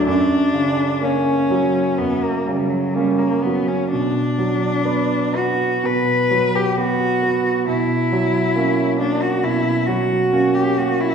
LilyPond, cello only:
\new Staff \with { instrumentName = "Cello" } { \time 4/4 \key fis \phrygian \tempo 4 = 64 d'4 cis'4 b16 ais16 g16 fis16 g16 ais16 b16 cis'16 | d'4. fis'8 b'8. g'16 fis'4 | e'4. d'16 fis'16 e'8 fis'8. g'16 fis'16 e'16 | }